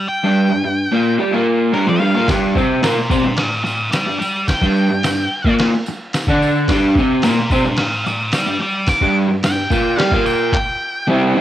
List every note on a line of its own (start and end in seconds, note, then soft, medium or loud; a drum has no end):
0.08 1.15 G5 loud
0.24 0.49 G2 medium
0.24 0.50 G3 loud
0.51 0.63 G2 medium
0.64 0.86 G2 medium
0.92 1.18 A#2 medium
0.92 1.19 A#3 medium
1.18 1.32 G3 medium
1.18 1.32 G4 medium
1.31 1.73 A#2 medium
1.31 1.73 A#3 loud
1.72 1.86 G2 medium
1.72 1.87 G3 loud
1.72 1.87 A#4 loud
1.87 2.00 F2 medium
1.87 2.00 F3 loud
1.87 2.00 D5 medium
2.00 2.14 G2 medium
2.00 2.14 G3 loud
2.00 2.27 F5 loud
2.14 2.28 A#2 medium
2.14 2.28 A#3 loud
2.27 2.55 G2 medium
2.27 2.55 G3 loud
2.27 kick loud
2.27 snare loud
2.27 tambourine medium
2.27 crash medium
2.55 2.82 C3 medium
2.55 2.83 C4 medium
2.55 kick medium
2.55 tambourine soft
2.83 2.96 A#2 medium
2.83 2.97 A#3 medium
2.83 3.10 A#4 medium
2.83 3.10 D5 medium
2.83 snare loud
2.83 tambourine medium
2.83 crash soft
2.97 muted overdriven electric guitar stroke medium
3.10 3.24 C3 medium
3.10 3.24 C4 loud
3.10 3.37 A#4 medium
3.10 3.37 D5 loud
3.10 kick loud
3.10 tambourine medium
3.23 3.46 G2 medium
3.37 3.63 D5 medium
3.37 3.64 F5 medium
3.37 snare loud
3.37 crash medium
3.64 3.90 D5 medium
3.64 3.92 F5 medium
3.64 muted overdriven electric guitar stroke medium
3.64 tambourine medium
3.92 4.18 D5 medium
3.92 4.18 G5 medium
3.92 snare loud
3.92 tambourine loud
3.92 crash medium
4.07 4.20 G2 medium
4.19 4.46 D5 medium
4.19 4.47 G5 medium
4.19 muted overdriven electric guitar stroke medium
4.19 tambourine medium
4.48 5.55 G5 loud
4.48 kick medium
4.48 snare loud
4.48 tambourine medium
4.48 crash medium
4.61 4.89 G2 loud
4.61 4.89 G3 loud
4.61 kick medium
4.76 tambourine soft
4.90 5.03 G2 medium
5.03 5.26 G2 medium
5.03 snare loud
5.03 tambourine medium
5.03 crash medium
5.44 5.72 A#2 loud
5.44 5.72 A#3 medium
5.44 kick loud
5.59 snare loud
5.59 crash medium
5.74 muted overdriven electric guitar stroke medium
5.86 muted overdriven electric guitar stroke medium
5.86 tambourine medium
6.13 snare loud
6.13 tambourine medium
6.13 crash medium
6.27 6.68 D3 loud
6.27 6.69 D4 loud
6.27 kick loud
6.42 tambourine medium
6.68 6.96 G2 loud
6.68 6.96 G3 medium
6.68 kick loud
6.68 snare loud
6.68 tambourine medium
6.68 crash medium
6.95 7.23 C3 medium
6.95 7.24 C4 medium
6.95 kick loud
6.95 tambourine soft
7.22 7.37 A#2 medium
7.22 7.37 A#3 loud
7.22 7.51 A#4 medium
7.22 7.50 D5 medium
7.22 snare medium
7.22 tambourine medium
7.22 crash medium
7.38 muted overdriven electric guitar stroke medium
7.50 7.64 C3 medium
7.50 7.64 C4 medium
7.50 7.77 A#4 medium
7.50 7.77 D5 medium
7.50 kick loud
7.50 tambourine medium
7.65 7.87 G2 medium
7.77 8.04 D5 medium
7.77 8.05 F5 loud
7.77 snare loud
7.77 crash medium
8.06 8.32 D5 medium
8.06 8.33 F5 medium
8.06 muted overdriven electric guitar stroke medium
8.06 tambourine medium
8.32 8.59 D5 medium
8.32 8.60 G5 medium
8.32 snare loud
8.32 tambourine medium
8.32 crash medium
8.47 8.59 G2 medium
8.60 8.87 D5 medium
8.60 8.88 G5 medium
8.60 muted overdriven electric guitar stroke medium
8.87 9.15 D6 loud
8.87 kick loud
8.87 snare loud
8.87 tambourine medium
8.87 crash medium
9.01 9.28 G2 loud
9.01 9.29 G3 loud
9.01 kick medium
9.29 9.42 G2 medium
9.43 9.65 G2 medium
9.43 9.99 G5 medium
9.43 snare loud
9.43 tambourine medium
9.43 crash medium
9.70 9.97 A#2 medium
9.70 9.98 A#3 medium
9.70 kick medium
9.70 tambourine medium
9.98 10.11 G3 loud
9.98 10.11 G4 loud
9.98 10.25 F5 medium
9.98 snare loud
9.98 tambourine soft
9.98 crash medium
10.11 10.52 A#2 medium
10.11 10.52 A#3 loud
10.11 kick loud
10.26 10.52 G5 medium
10.26 tambourine medium
10.52 11.07 G5 medium
10.52 kick loud
10.52 clap medium
11.07 11.34 C3 medium
11.07 11.36 G3 loud
11.07 11.36 C4 loud
11.07 11.37 E4 loud
11.35 11.41 C3 medium
11.35 11.41 G3 medium
11.35 11.41 C4 medium